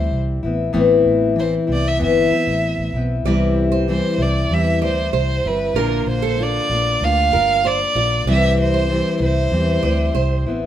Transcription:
Already playing: G3 C4 E4 C5
0.12 C2
0.43 A1 B3 C4 E4
0.73 A1 A2 E3 B3 C4 E4
1.06 A1
1.36 E3 C4 E4
1.40 C5
1.67 C2 B3 C4 E4
1.73 D5
1.88 E5
1.99 G1 E3 B3 C4 E4
2.03 E5
2.31 B3 C4 E4, muted fingered electric bass stroke
2.47 A1
2.78 A1
2.94 B1 B3 C4 E4
3.24 C2 C3 E3 G3 C4 E4 D5
3.72 C5
3.88 E3 G3 C4 E4 C5
4.18 C2 G3 C4 E4
4.22 D5
4.50 E2 E3 G3 C4 E5
4.54 E4
4.82 D2 G3 C4 E4 C5 D5
5.13 C2 C5
5.17 C5
5.44 G1 C4 E4 B4
5.49 G3
5.74 A#1 A#2 D3 A#3 D4 F4 A#4
5.79 A#4
6.06 A#1 C5
6.22 A4
6.39 D3 A#3 D4 F4
6.43 D5
6.69 A#1 A#3 D4 F4
7.01 D2 D3 A#3 D4 F5
7.05 F4
7.32 G1 D4 F4 A#4
7.37 A#3
7.65 C5 D5
7.95 A#1 A#3 D4 F4 D5
8.26 C2 C3 E3 G3 C4 D5
8.30 E4 E5
8.61 C5
8.74 C5
8.89 E3 G3 C4 E4
9.20 C2 C4 E4 C5
9.24 G3
9.51 E2 E3 G3 C4 E4
9.83 D2 G3 C4 E4 D5
10.15 C2 C5
10.45 A1 B3 C4 E4

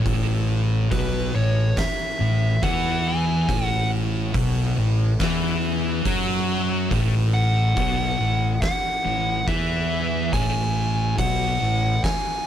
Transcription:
0.06 A1 A2, kick, open hi-hat
0.91 B1 B2 B4, kick, open hi-hat
1.35 A1 A2 C#5
1.77 E5, kick, snare, open hi-hat
2.20 A1 A2
2.63 E2 E3 F#5, kick, open hi-hat
3.07 G#5
3.49 A1 A2, kick, open hi-hat
3.66 F#5
4.34 B1 B2, kick, open hi-hat
4.78 A1 A2
5.20 E2 E3, kick, snare, open hi-hat
6.05 F#2 F#3, kick, open hi-hat
6.91 A1 A2, kick, open hi-hat
7.34 F#5
7.77 B1 B2, kick, open hi-hat
8.20 A1 A2
8.62 F#5, kick, snare, open hi-hat
9.05 A1 A2
9.47 E2 E3 E5, kick, open hi-hat
10.33 A1 A2 G#5, kick, open hi-hat
11.18 B1 B2 F#5, kick, open hi-hat
11.61 A1 A2
12.04 G#5, kick, snare, open hi-hat

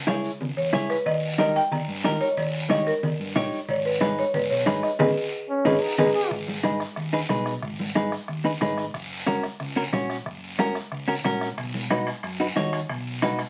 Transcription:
Already playing: C#2 G#5
0.07 E4 G#4 C#5, bombo rim, high conga, short guiro
0.24 short guiro
0.40 C#2, high conga, low conga, long guiro
0.57 E2 C#5
0.73 C#2 E4 G#4 C#5, bombo low, bombo rim, high conga, short guiro
0.90 B4, bombo rim, short guiro
1.06 D#2 D#5, bombo low, cowbell, high conga, long guiro
1.38 D#4 G4 A#4 D#5, bombo rim, cowbell, high conga, short guiro
1.56 G5, short guiro
1.71 D#2 A#5, cowbell, high conga, low conga, long guiro
1.88 G2
2.04 D#2 D#4 G4 A#4 D#5, bombo low, bombo rim, cowbell, high conga, low timbale, short guiro
2.21 C#5, short guiro
2.37 D#2, bombo low, cowbell, high conga, long guiro
2.70 D#4 G4 C#5 D#5, bombo rim, cowbell, high conga, short guiro
2.87 A#4, short guiro
3.03 D#2, cowbell, high conga, low conga, long guiro
3.20 G2
3.35 A#1 D#4 G4 C#5, bombo low, bombo rim, cowbell, high conga, low timbale, short guiro
3.53 short guiro
3.68 G#1 C#5, bombo low, cowbell, high conga, long guiro
3.85 B4
4.01 D#4 G#4 B4, bombo rim, cowbell, high conga, short guiro
4.18 C#5, short guiro
4.34 G#1 B4, cowbell, high conga, low conga, long guiro
4.50 B1 C#5
4.66 G#1 D#4 G#4 B4, bombo low, bombo rim, cowbell, high conga, short guiro
4.83 D#5, bombo rim, short guiro
4.99 G#1 D#4 G#4 B4 D#5, bombo low, low conga, high timbale, long guiro
5.49 C#4
5.65 G#1 D#4 G#4 B4 D#5, bombo low, low conga, high timbale, long guiro
5.82 D#4
5.98 G#1 D#4 G#4 B4 D#5, bombo low, low conga, high timbale, long guiro
6.15 G#4
6.31 G#1, bombo low, bombo rim, long guiro
6.48 high conga
6.63 D#4 G#4 B4, bombo rim, high conga, short guiro
6.80 bombo rim, short guiro
6.96 D#2, bombo rim, long guiro
7.13 D#4 G#4 B4
7.29 B1 D#4 G#4 B4, bombo low, bombo rim, high conga, short guiro
7.46 bombo rim, short guiro
7.62 G#1, bombo low, bombo rim, long guiro
7.79 high conga
7.95 D#4 G#4 B4, bombo rim, high conga, short guiro
8.12 bombo rim, short guiro
8.28 D#2, bombo rim, long guiro
8.45 D#4 G#4 B4
8.61 G#1 D#4 G#4 B4, bombo low, bombo rim, high conga, short guiro
8.78 bombo rim, short guiro
8.94 F#1, bombo low, bombo rim, long guiro
9.26 C#4 F#4 A#4, bombo rim, high conga, short guiro
9.43 bombo rim, short guiro
9.60 C#2, bombo rim, long guiro
9.76 C#4 F#4 A#4
9.93 A#1 C#4 F#4 C#5, bombo low, bombo rim, high conga, short guiro
10.10 bombo rim, short guiro
10.26 F#1, bombo low, bombo rim, long guiro
10.59 C#4 F#4 A#4, bombo rim, high conga, short guiro
10.75 bombo rim, short guiro
10.92 C#2, bombo rim, long guiro
11.08 C#4 F#4 A#4
11.24 A#1 C#4 F#4 A#4, bombo low, bombo rim, high conga, short guiro
11.41 bombo rim, short guiro
11.58 B1, bombo low, bombo rim, high timbale, long guiro
11.74 high conga
11.90 D#4 F#4 B4, bombo rim, high conga, high timbale, short guiro
12.07 bombo rim, high timbale, short guiro
12.23 F#2, bombo rim, high timbale, long guiro
12.40 D#4 F#4 B4
12.56 D#2 D#4 F#4 C#5, bombo low, bombo rim, high conga, high timbale, low timbale, short guiro
12.73 bombo rim, high timbale, short guiro
12.89 B1, bombo low, bombo rim, high timbale, long guiro
13.22 D#4 F#4 B4, bombo rim, high conga, high timbale, short guiro
13.39 bombo rim, high timbale, short guiro

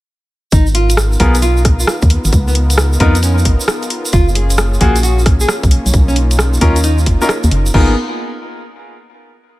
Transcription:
0.52 G#1 B3 D#4 F4 A#4, kick, closed hi-hat, shaker
0.67 shaker
0.75 F4, open hi-hat
0.90 closed hi-hat, shaker
0.97 cross-stick, shaker
1.12 shaker
1.20 B1 B3 F4 G#4 A#4, kick, open hi-hat
1.35 closed hi-hat, shaker
1.42 F4, closed hi-hat, shaker
1.57 shaker
1.65 kick, cross-stick, open hi-hat
1.80 F4, shaker
1.87 cross-stick, shaker
2.02 D#2, kick, closed hi-hat, shaker
2.10 open hi-hat
2.25 G#1, closed hi-hat, shaker
2.32 C#2 D#4 F4 A#4, kick, closed hi-hat, shaker
2.48 B3, shaker
2.55 open hi-hat
2.70 closed hi-hat, shaker
2.78 cross-stick, shaker
2.93 shaker
3.00 F2 B3 D#4 F4 A#4, kick, open hi-hat
3.15 closed hi-hat, shaker
3.23 C#4, closed hi-hat, shaker
3.38 shaker
3.45 G#1, kick, open hi-hat
3.60 shaker
3.68 cross-stick, open hi-hat, shaker
3.83 closed hi-hat, shaker
3.90 open hi-hat
4.05 closed hi-hat, shaker
4.12 F#1 A#3 C#4 F4 G#4, kick, closed hi-hat, shaker
4.28 shaker
4.35 G#4, open hi-hat
4.50 closed hi-hat, shaker
4.58 cross-stick, shaker
4.74 shaker
4.81 A#1 A#3 F4 F#4 G#4, kick, open hi-hat
4.96 closed hi-hat, shaker
5.03 F#4, closed hi-hat, shaker
5.18 shaker
5.26 kick, cross-stick, open hi-hat
5.40 G#4, shaker
5.48 cross-stick, shaker
5.63 B1, kick, closed hi-hat, shaker
5.71 D#4 F4, open hi-hat
5.86 B1, closed hi-hat, shaker
5.93 B1, kick, closed hi-hat, shaker
6.08 C#4, shaker
6.16 open hi-hat
6.31 closed hi-hat, shaker
6.39 cross-stick, shaker
6.54 shaker
6.61 D#2 C#4 D#4 F4 A#4, kick, open hi-hat
6.76 closed hi-hat, shaker
6.83 D#4, closed hi-hat, shaker
6.98 shaker
7.06 F#1, kick, open hi-hat
7.21 C#4 D#4 F4 A#4, shaker
7.29 cross-stick, open hi-hat, shaker
7.44 D#2, closed hi-hat, shaker
7.51 F#1, open hi-hat
7.66 closed hi-hat, shaker
7.74 G#1 A#3 B3 D#4 F4 G#4 A#4, kick, crash

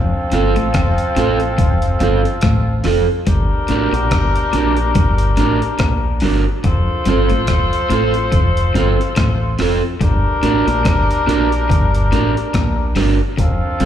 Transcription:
Already playing: F1 C4 F4 A4
0.32 G1 G2 C4 F4 A4, closed hi-hat
0.56 A1 A2, closed hi-hat
0.74 F1 F2, kick, cross-stick, closed hi-hat
0.98 closed hi-hat
1.16 A1 A2 C4 F4 A4, closed hi-hat
1.40 closed hi-hat
1.58 F1 F2, kick, closed hi-hat
1.82 closed hi-hat
2.00 G1 G2 C4 F4 A4, closed hi-hat
2.25 closed hi-hat
2.41 A1 A2, kick, cross-stick, closed hi-hat
2.84 F1 F2 C4 F4 A4, cross-stick, open hi-hat
3.27 G1 G2 D4 G4 A#4, kick, closed hi-hat
3.68 A1 A2 D4 G4 A#4, closed hi-hat
3.93 A#1 A#2, closed hi-hat
4.11 G1 G2, kick, cross-stick, closed hi-hat
4.36 closed hi-hat
4.53 A#1 A#2 D4 G4 A#4, closed hi-hat
4.77 closed hi-hat
4.95 G1 G2, kick, closed hi-hat
5.18 closed hi-hat
5.37 A1 A2 D4 G4 A#4, closed hi-hat
5.62 closed hi-hat
5.79 A#1 A#2, kick, cross-stick, closed hi-hat
6.20 G1 G2 D4 G4 A#4, open hi-hat
6.64 F1 F2 F4 A4 C5, kick, closed hi-hat
7.05 G1 G2 C4 F4 A4, closed hi-hat
7.29 A1 A2, closed hi-hat
7.47 F1 F2, kick, cross-stick, closed hi-hat
7.73 closed hi-hat
7.90 A1 A2 C4 F4 A4, closed hi-hat
8.14 closed hi-hat
8.32 F1 F2, kick, closed hi-hat
8.57 closed hi-hat
8.74 G1 G2 C4 F4 A4, closed hi-hat
9.01 closed hi-hat
9.16 A1 A2, kick, cross-stick, closed hi-hat
9.59 F1 F2 C4 F4 A4, cross-stick, open hi-hat
10.01 G1 G2 D4 G4 A#4, kick, closed hi-hat
10.43 A1 A2 D4 G4 A#4, closed hi-hat
10.67 A#1 A#2, closed hi-hat
10.85 G1 G2, kick, cross-stick, closed hi-hat
11.11 closed hi-hat
11.27 A#1 A#2 D4 G4 A#4, closed hi-hat
11.52 closed hi-hat
11.69 G1 G2, kick, closed hi-hat
11.95 closed hi-hat
12.12 A1 A2 D4 G4 A#4, closed hi-hat
12.37 closed hi-hat
12.54 A#1 A#2, kick, cross-stick, closed hi-hat
12.96 G1 G2 D4 G4 A#4, cross-stick, open hi-hat
13.37 F1 F2 C4 F4 A4, kick, closed hi-hat
13.80 G1 G2 C4 F4 A4, closed hi-hat

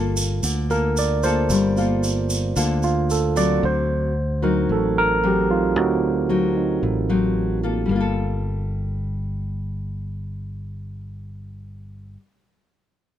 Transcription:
Already playing: G1 G3 A#3 F4 A4
0.17 shaker
0.43 D2 D3, shaker
0.70 A#3 F4 A4 A#4, shaker
0.97 D5, shaker
1.23 A#3 F4 A4 C5, shaker
1.50 G1 G3, shaker
1.76 A#3 F4 A4, shaker
2.03 shaker
2.30 shaker
2.56 D2 D3 A#3 F4 A4, shaker
2.83 F4, shaker
3.10 A4, shaker
3.36 F#3 C4 D5, shaker
3.63 D2 D3 C5
4.42 F#3 C4 D#4 A#4
4.69 A1 A2 A4
4.98 A#4
5.23 F#3 C4 D#4 G4
5.50 F#3 C4 D#4 F4
5.75 D2 D3 F#3 C4 D#4 F#4
6.29 F#3 C4 D#4
6.56 F#3 C4 D#4
6.83 A1 A2
7.09 F#3 C4 D#4
7.63 A#3 F4 A4
7.86 G1 G3
7.91 A#3
7.96 F4
8.00 A4

